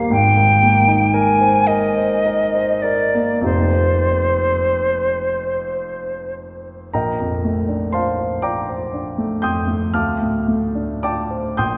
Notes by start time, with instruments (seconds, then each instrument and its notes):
Already playing: grand piano A#3 G4 A#4 C5 D5
0.10 grand piano G#1 G#2, flute G5
0.37 grand piano D#3
0.63 grand piano A#3
0.88 grand piano D#4
1.14 grand piano A#4, flute G#5
1.41 grand piano C5
1.67 grand piano A#4, flute D#5
1.97 grand piano C5
2.26 grand piano A#4
2.55 grand piano C5
2.82 grand piano A#4, flute D5
3.15 grand piano A#3
3.41 grand piano F2 A#3 D#4 G4, flute C5
3.45 grand piano F1 C5
6.93 grand piano A#1 A#4 D#5 G5 A#5
7.20 grand piano F2
7.45 grand piano A3
7.69 grand piano D4
7.92 grand piano F4 C5 F5 A5 C6
8.19 grand piano C5
8.42 grand piano F4 D5 G5 A#5 D6
8.69 grand piano C5
8.93 grand piano D4
9.18 grand piano A3
9.42 grand piano F2 G5 C6 D#6 G6
9.67 grand piano A3
9.94 grand piano D2 F5 A5 D6 F6
10.21 grand piano A2
10.48 grand piano A3
10.75 grand piano D4
11.03 grand piano F4 D5 G5 A5 D6
11.31 grand piano C5
11.57 grand piano A#1 G5 C6 D#6 G6